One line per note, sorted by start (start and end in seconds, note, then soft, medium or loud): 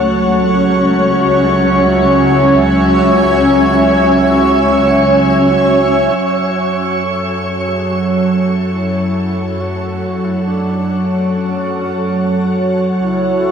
0.00 6.13 C#2 medium
0.00 6.15 F#3 medium
0.00 8.04 C#4 medium
0.00 6.16 C#5 medium
0.00 13.52 C#5 medium
0.00 1.95 F#5 medium
0.40 7.44 E5 medium
0.49 8.92 G#5 medium
6.16 12.98 F#2 medium
6.16 13.52 F#3 medium
6.16 7.05 F#4 medium
6.16 13.03 A4 medium
6.16 13.52 C#5 medium
7.04 7.68 A4 medium
7.67 7.92 G#4 medium
7.90 8.73 F#4 medium
8.17 13.52 F#5 medium
8.73 9.62 E4 medium
9.60 10.26 F#4 medium
10.24 10.44 E4 medium
10.44 11.00 D4 medium
11.32 12.57 C#4 medium
13.02 13.52 C#2 medium
13.02 13.52 C#4 medium
13.02 13.52 E4 medium